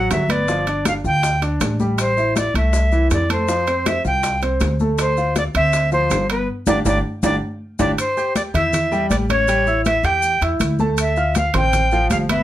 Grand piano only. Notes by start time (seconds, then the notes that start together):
Already playing: F#3 F#4
0.29 B3 B4
0.48 F3 F4
0.67 D4 D5
1.05 F4 F5
1.42 D4 D5
1.80 G3 G4
2.18 E4 E5
2.55 A3 A4
2.92 E3 E4
3.30 A3 A4
3.48 F3 F4
3.68 C4 C5
4.05 F4 F5
4.42 C4 C5
4.80 A3 A4
5.17 F4 F5
5.55 C4 C5
5.92 F3 F4
6.30 B3 B4
6.67 D4 F4 G4
6.85 D4 F4 G4
7.23 D4 F4 G4
7.79 D4 F4 G4
8.17 G4 G5 G6
8.54 E4 E5 E6
8.92 G3 G4 G5
9.29 C#4 C#5 C#6
9.48 G3 G4 G5
9.67 E4 E5 E6
10.04 G4 G5 G6
10.42 E4 E5 E6
10.80 A3 A4 A5
11.17 F4 F5 F6
11.54 C4 C5 C6
11.93 F3 F4 F5
12.29 B3 B4 B5